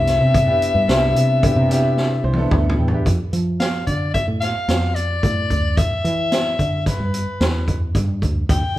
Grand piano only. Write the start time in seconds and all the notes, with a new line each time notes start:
Already playing: B3 D4 E4 G4
0.46 B3 D4 E4 G4
0.87 B3 D4 E4 G4
1.41 B3 D4 E4 G4
1.68 B3 D4 E4 G4
2.24 C5
2.37 B3 D4 E4 A4
2.51 E5
2.79 G5
2.92 B3 D4 E4 G4